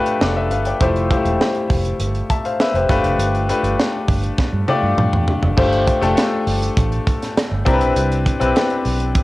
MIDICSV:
0, 0, Header, 1, 4, 480
1, 0, Start_track
1, 0, Tempo, 595829
1, 651, Time_signature, 4, 2, 24, 8
1, 7436, End_track
2, 0, Start_track
2, 0, Title_t, "Grand piano"
2, 0, Program_c, 0, 0
2, 0, Control_c, 0, 64, 127
2, 0, Note_on_c, 0, 57, 79
2, 0, Note_on_c, 0, 62, 70
2, 0, Note_on_c, 0, 65, 73
2, 0, Note_on_c, 0, 67, 78
2, 0, Note_on_c, 0, 70, 62
2, 0, Note_on_c, 0, 71, 90
2, 175, Note_off_c, 0, 71, 0
2, 176, Note_on_c, 0, 74, 69
2, 179, Note_on_c, 0, 69, 56
2, 288, Note_off_c, 0, 74, 0
2, 289, Note_off_c, 0, 69, 0
2, 294, Note_on_c, 0, 76, 66
2, 300, Note_on_c, 0, 71, 60
2, 404, Note_off_c, 0, 71, 0
2, 405, Note_off_c, 0, 57, 0
2, 407, Note_off_c, 0, 76, 0
2, 408, Note_off_c, 0, 62, 0
2, 408, Note_off_c, 0, 65, 0
2, 410, Note_off_c, 0, 67, 0
2, 411, Note_on_c, 0, 77, 64
2, 416, Note_on_c, 0, 71, 57
2, 525, Note_off_c, 0, 77, 0
2, 528, Note_off_c, 0, 71, 0
2, 533, Note_on_c, 0, 79, 57
2, 540, Note_on_c, 0, 74, 48
2, 651, Note_on_c, 0, 57, 73
2, 654, Note_on_c, 0, 64, 70
2, 657, Note_on_c, 0, 65, 72
2, 659, Note_on_c, 0, 67, 67
2, 659, Note_on_c, 0, 72, 81
2, 663, Control_c, 0, 64, 0
2, 669, Note_off_c, 0, 70, 0
2, 760, Note_off_c, 0, 79, 0
2, 764, Note_off_c, 0, 74, 0
2, 784, Control_c, 0, 64, 127
2, 810, Note_off_c, 0, 57, 0
2, 811, Note_off_c, 0, 64, 0
2, 813, Note_off_c, 0, 65, 0
2, 814, Note_off_c, 0, 67, 0
2, 814, Note_off_c, 0, 72, 0
2, 889, Note_on_c, 0, 55, 58
2, 891, Note_on_c, 0, 64, 67
2, 891, Note_on_c, 0, 65, 68
2, 896, Note_on_c, 0, 67, 67
2, 900, Note_on_c, 0, 72, 78
2, 940, Note_on_c, 0, 57, 69
2, 943, Note_off_c, 0, 55, 0
2, 1527, Note_off_c, 0, 64, 0
2, 1527, Note_off_c, 0, 65, 0
2, 1530, Note_off_c, 0, 67, 0
2, 1531, Note_off_c, 0, 72, 0
2, 1552, Note_off_c, 0, 57, 0
2, 1852, Note_on_c, 0, 81, 66
2, 1858, Note_on_c, 0, 76, 51
2, 1966, Note_off_c, 0, 81, 0
2, 1969, Note_off_c, 0, 76, 0
2, 1973, Note_on_c, 0, 77, 65
2, 1978, Note_on_c, 0, 72, 53
2, 2087, Note_off_c, 0, 77, 0
2, 2089, Note_off_c, 0, 72, 0
2, 2095, Note_on_c, 0, 76, 70
2, 2099, Note_on_c, 0, 71, 63
2, 2207, Note_off_c, 0, 76, 0
2, 2210, Note_off_c, 0, 71, 0
2, 2219, Note_on_c, 0, 72, 64
2, 2222, Note_on_c, 0, 67, 50
2, 2323, Note_off_c, 0, 67, 0
2, 2328, Note_on_c, 0, 57, 86
2, 2329, Note_on_c, 0, 62, 79
2, 2333, Note_on_c, 0, 65, 77
2, 2335, Note_on_c, 0, 67, 78
2, 2338, Note_on_c, 0, 71, 94
2, 2340, Control_c, 0, 64, 0
2, 2444, Note_off_c, 0, 72, 0
2, 2470, Control_c, 0, 64, 127
2, 2714, Note_off_c, 0, 57, 0
2, 2715, Note_off_c, 0, 62, 0
2, 2716, Note_off_c, 0, 65, 0
2, 2718, Note_off_c, 0, 67, 0
2, 2719, Note_off_c, 0, 71, 0
2, 2811, Note_on_c, 0, 57, 70
2, 2812, Note_on_c, 0, 62, 66
2, 2815, Note_on_c, 0, 65, 66
2, 2816, Note_on_c, 0, 67, 65
2, 2820, Note_on_c, 0, 71, 85
2, 3447, Note_off_c, 0, 57, 0
2, 3448, Note_off_c, 0, 62, 0
2, 3450, Note_off_c, 0, 65, 0
2, 3450, Note_off_c, 0, 67, 0
2, 3452, Note_off_c, 0, 71, 0
2, 3769, Note_on_c, 0, 57, 84
2, 3769, Note_on_c, 0, 62, 75
2, 3773, Note_on_c, 0, 65, 74
2, 3775, Note_on_c, 0, 67, 77
2, 3777, Note_on_c, 0, 74, 92
2, 4248, Note_off_c, 0, 57, 0
2, 4248, Note_off_c, 0, 62, 0
2, 4250, Note_off_c, 0, 65, 0
2, 4251, Note_off_c, 0, 67, 0
2, 4252, Note_off_c, 0, 74, 0
2, 4485, Note_on_c, 0, 57, 83
2, 4485, Note_on_c, 0, 62, 70
2, 4489, Note_on_c, 0, 65, 74
2, 4491, Note_on_c, 0, 67, 71
2, 4494, Note_on_c, 0, 72, 84
2, 4502, Control_c, 0, 64, 0
2, 4668, Control_c, 0, 64, 127
2, 4727, Note_off_c, 0, 57, 0
2, 4727, Note_off_c, 0, 62, 0
2, 4729, Note_off_c, 0, 65, 0
2, 4730, Note_off_c, 0, 67, 0
2, 4732, Note_off_c, 0, 72, 0
2, 4845, Note_on_c, 0, 57, 84
2, 4848, Note_on_c, 0, 62, 75
2, 4850, Note_on_c, 0, 65, 76
2, 4853, Note_on_c, 0, 67, 78
2, 4856, Note_on_c, 0, 69, 91
2, 5485, Note_off_c, 0, 57, 0
2, 5486, Note_off_c, 0, 62, 0
2, 5487, Note_off_c, 0, 65, 0
2, 5489, Note_off_c, 0, 67, 0
2, 5490, Note_off_c, 0, 69, 0
2, 6164, Note_on_c, 0, 60, 92
2, 6167, Note_on_c, 0, 62, 85
2, 6168, Note_on_c, 0, 64, 79
2, 6172, Note_on_c, 0, 67, 82
2, 6176, Note_on_c, 0, 70, 78
2, 6183, Control_c, 0, 64, 0
2, 6227, Note_off_c, 0, 70, 0
2, 6228, Note_on_c, 0, 71, 94
2, 6335, Control_c, 0, 64, 127
2, 6648, Note_off_c, 0, 60, 0
2, 6650, Note_off_c, 0, 62, 0
2, 6650, Note_off_c, 0, 64, 0
2, 6652, Note_off_c, 0, 67, 0
2, 6680, Note_off_c, 0, 71, 0
2, 6766, Note_on_c, 0, 60, 86
2, 6769, Note_on_c, 0, 62, 70
2, 6770, Note_on_c, 0, 64, 74
2, 6775, Note_on_c, 0, 67, 75
2, 6775, Note_on_c, 0, 71, 89
2, 7405, Note_off_c, 0, 60, 0
2, 7407, Note_off_c, 0, 62, 0
2, 7407, Note_off_c, 0, 64, 0
2, 7409, Note_off_c, 0, 67, 0
2, 7410, Note_off_c, 0, 71, 0
2, 7436, End_track
3, 0, Start_track
3, 0, Title_t, "Fingered electric bass"
3, 0, Program_c, 1, 33
3, 170, Note_on_c, 1, 29, 88
3, 408, Note_off_c, 1, 29, 0
3, 408, Note_on_c, 1, 31, 78
3, 578, Note_off_c, 1, 31, 0
3, 651, Note_on_c, 1, 29, 106
3, 905, Note_off_c, 1, 29, 0
3, 1007, Note_on_c, 1, 28, 90
3, 1093, Note_off_c, 1, 28, 0
3, 1369, Note_on_c, 1, 29, 91
3, 1539, Note_off_c, 1, 29, 0
3, 1605, Note_on_c, 1, 31, 89
3, 1777, Note_off_c, 1, 31, 0
3, 2206, Note_on_c, 1, 29, 93
3, 2293, Note_off_c, 1, 29, 0
3, 2331, Note_on_c, 1, 31, 92
3, 2416, Note_off_c, 1, 31, 0
3, 2445, Note_on_c, 1, 29, 88
3, 2532, Note_off_c, 1, 29, 0
3, 2565, Note_on_c, 1, 31, 103
3, 2821, Note_off_c, 1, 31, 0
3, 2925, Note_on_c, 1, 31, 84
3, 3012, Note_off_c, 1, 31, 0
3, 3289, Note_on_c, 1, 31, 85
3, 3459, Note_off_c, 1, 31, 0
3, 3649, Note_on_c, 1, 43, 92
3, 3734, Note_off_c, 1, 43, 0
3, 3889, Note_on_c, 1, 43, 88
3, 3974, Note_off_c, 1, 43, 0
3, 4006, Note_on_c, 1, 43, 90
3, 4093, Note_off_c, 1, 43, 0
3, 4133, Note_on_c, 1, 40, 78
3, 4217, Note_off_c, 1, 40, 0
3, 4371, Note_on_c, 1, 29, 97
3, 4456, Note_off_c, 1, 29, 0
3, 4490, Note_on_c, 1, 31, 110
3, 4745, Note_off_c, 1, 31, 0
3, 4849, Note_on_c, 1, 29, 84
3, 4935, Note_off_c, 1, 29, 0
3, 5211, Note_on_c, 1, 31, 89
3, 5380, Note_off_c, 1, 31, 0
3, 5452, Note_on_c, 1, 33, 97
3, 5621, Note_off_c, 1, 33, 0
3, 6053, Note_on_c, 1, 31, 78
3, 6137, Note_off_c, 1, 31, 0
3, 6174, Note_on_c, 1, 36, 102
3, 6296, Note_off_c, 1, 36, 0
3, 6296, Note_on_c, 1, 35, 89
3, 6379, Note_off_c, 1, 35, 0
3, 6414, Note_on_c, 1, 36, 101
3, 6667, Note_off_c, 1, 36, 0
3, 6774, Note_on_c, 1, 35, 89
3, 6858, Note_off_c, 1, 35, 0
3, 7133, Note_on_c, 1, 35, 93
3, 7373, Note_off_c, 1, 35, 0
3, 7373, Note_on_c, 1, 33, 90
3, 7436, Note_off_c, 1, 33, 0
3, 7436, End_track
4, 0, Start_track
4, 0, Title_t, "Drums"
4, 48, Note_on_c, 9, 42, 43
4, 129, Note_off_c, 9, 42, 0
4, 172, Note_on_c, 9, 38, 109
4, 252, Note_off_c, 9, 38, 0
4, 411, Note_on_c, 9, 42, 57
4, 491, Note_off_c, 9, 42, 0
4, 525, Note_on_c, 9, 42, 47
4, 606, Note_off_c, 9, 42, 0
4, 649, Note_on_c, 9, 42, 83
4, 651, Note_on_c, 9, 36, 111
4, 730, Note_off_c, 9, 42, 0
4, 731, Note_off_c, 9, 36, 0
4, 773, Note_on_c, 9, 42, 34
4, 853, Note_off_c, 9, 42, 0
4, 892, Note_on_c, 9, 36, 92
4, 895, Note_on_c, 9, 42, 71
4, 972, Note_off_c, 9, 36, 0
4, 975, Note_off_c, 9, 42, 0
4, 1010, Note_on_c, 9, 42, 49
4, 1091, Note_off_c, 9, 42, 0
4, 1136, Note_on_c, 9, 38, 111
4, 1217, Note_off_c, 9, 38, 0
4, 1246, Note_on_c, 9, 42, 32
4, 1326, Note_off_c, 9, 42, 0
4, 1370, Note_on_c, 9, 36, 88
4, 1370, Note_on_c, 9, 46, 70
4, 1450, Note_off_c, 9, 36, 0
4, 1451, Note_off_c, 9, 46, 0
4, 1490, Note_on_c, 9, 42, 50
4, 1570, Note_off_c, 9, 42, 0
4, 1609, Note_on_c, 9, 42, 89
4, 1690, Note_off_c, 9, 42, 0
4, 1730, Note_on_c, 9, 42, 33
4, 1811, Note_off_c, 9, 42, 0
4, 1853, Note_on_c, 9, 36, 79
4, 1854, Note_on_c, 9, 42, 64
4, 1933, Note_off_c, 9, 36, 0
4, 1935, Note_off_c, 9, 42, 0
4, 1974, Note_on_c, 9, 42, 41
4, 2054, Note_off_c, 9, 42, 0
4, 2095, Note_on_c, 9, 38, 113
4, 2175, Note_off_c, 9, 38, 0
4, 2217, Note_on_c, 9, 42, 35
4, 2298, Note_off_c, 9, 42, 0
4, 2331, Note_on_c, 9, 36, 104
4, 2333, Note_on_c, 9, 42, 65
4, 2337, Note_on_c, 9, 38, 36
4, 2411, Note_off_c, 9, 36, 0
4, 2413, Note_off_c, 9, 42, 0
4, 2417, Note_off_c, 9, 38, 0
4, 2450, Note_on_c, 9, 42, 48
4, 2530, Note_off_c, 9, 42, 0
4, 2574, Note_on_c, 9, 42, 89
4, 2654, Note_off_c, 9, 42, 0
4, 2696, Note_on_c, 9, 42, 34
4, 2777, Note_off_c, 9, 42, 0
4, 2814, Note_on_c, 9, 42, 79
4, 2895, Note_off_c, 9, 42, 0
4, 2934, Note_on_c, 9, 42, 52
4, 3014, Note_off_c, 9, 42, 0
4, 3058, Note_on_c, 9, 38, 104
4, 3138, Note_off_c, 9, 38, 0
4, 3290, Note_on_c, 9, 36, 92
4, 3290, Note_on_c, 9, 46, 66
4, 3371, Note_off_c, 9, 36, 0
4, 3371, Note_off_c, 9, 46, 0
4, 3411, Note_on_c, 9, 42, 51
4, 3491, Note_off_c, 9, 42, 0
4, 3531, Note_on_c, 9, 36, 100
4, 3535, Note_on_c, 9, 38, 60
4, 3611, Note_off_c, 9, 36, 0
4, 3615, Note_off_c, 9, 38, 0
4, 3771, Note_on_c, 9, 48, 66
4, 3851, Note_off_c, 9, 48, 0
4, 4011, Note_on_c, 9, 47, 79
4, 4092, Note_off_c, 9, 47, 0
4, 4133, Note_on_c, 9, 45, 78
4, 4214, Note_off_c, 9, 45, 0
4, 4251, Note_on_c, 9, 43, 93
4, 4331, Note_off_c, 9, 43, 0
4, 4371, Note_on_c, 9, 43, 89
4, 4451, Note_off_c, 9, 43, 0
4, 4491, Note_on_c, 9, 36, 107
4, 4491, Note_on_c, 9, 49, 83
4, 4572, Note_off_c, 9, 36, 0
4, 4572, Note_off_c, 9, 49, 0
4, 4611, Note_on_c, 9, 42, 33
4, 4692, Note_off_c, 9, 42, 0
4, 4732, Note_on_c, 9, 36, 93
4, 4733, Note_on_c, 9, 42, 84
4, 4812, Note_off_c, 9, 36, 0
4, 4814, Note_off_c, 9, 42, 0
4, 4852, Note_on_c, 9, 42, 53
4, 4933, Note_off_c, 9, 42, 0
4, 4971, Note_on_c, 9, 42, 90
4, 4977, Note_on_c, 9, 38, 110
4, 5051, Note_off_c, 9, 42, 0
4, 5058, Note_off_c, 9, 38, 0
4, 5212, Note_on_c, 9, 46, 71
4, 5292, Note_off_c, 9, 46, 0
4, 5334, Note_on_c, 9, 42, 51
4, 5415, Note_off_c, 9, 42, 0
4, 5454, Note_on_c, 9, 36, 106
4, 5456, Note_on_c, 9, 42, 86
4, 5534, Note_off_c, 9, 36, 0
4, 5536, Note_off_c, 9, 42, 0
4, 5574, Note_on_c, 9, 42, 36
4, 5655, Note_off_c, 9, 42, 0
4, 5696, Note_on_c, 9, 36, 83
4, 5698, Note_on_c, 9, 42, 72
4, 5776, Note_off_c, 9, 36, 0
4, 5778, Note_off_c, 9, 42, 0
4, 5819, Note_on_c, 9, 42, 45
4, 5823, Note_on_c, 9, 38, 34
4, 5899, Note_off_c, 9, 42, 0
4, 5903, Note_off_c, 9, 38, 0
4, 5940, Note_on_c, 9, 42, 93
4, 5941, Note_on_c, 9, 38, 109
4, 6021, Note_off_c, 9, 42, 0
4, 6022, Note_off_c, 9, 38, 0
4, 6174, Note_on_c, 9, 36, 103
4, 6177, Note_on_c, 9, 42, 66
4, 6255, Note_off_c, 9, 36, 0
4, 6258, Note_off_c, 9, 42, 0
4, 6290, Note_on_c, 9, 42, 49
4, 6371, Note_off_c, 9, 42, 0
4, 6415, Note_on_c, 9, 42, 85
4, 6495, Note_off_c, 9, 42, 0
4, 6538, Note_on_c, 9, 42, 38
4, 6619, Note_off_c, 9, 42, 0
4, 6654, Note_on_c, 9, 36, 91
4, 6658, Note_on_c, 9, 42, 80
4, 6735, Note_off_c, 9, 36, 0
4, 6739, Note_off_c, 9, 42, 0
4, 6776, Note_on_c, 9, 42, 54
4, 6857, Note_off_c, 9, 42, 0
4, 6895, Note_on_c, 9, 42, 89
4, 6902, Note_on_c, 9, 38, 115
4, 6976, Note_off_c, 9, 42, 0
4, 6982, Note_off_c, 9, 38, 0
4, 7010, Note_on_c, 9, 42, 36
4, 7090, Note_off_c, 9, 42, 0
4, 7129, Note_on_c, 9, 46, 73
4, 7210, Note_off_c, 9, 46, 0
4, 7251, Note_on_c, 9, 42, 48
4, 7331, Note_off_c, 9, 42, 0
4, 7371, Note_on_c, 9, 42, 89
4, 7373, Note_on_c, 9, 36, 111
4, 7436, Note_off_c, 9, 36, 0
4, 7436, Note_off_c, 9, 42, 0
4, 7436, End_track
0, 0, End_of_file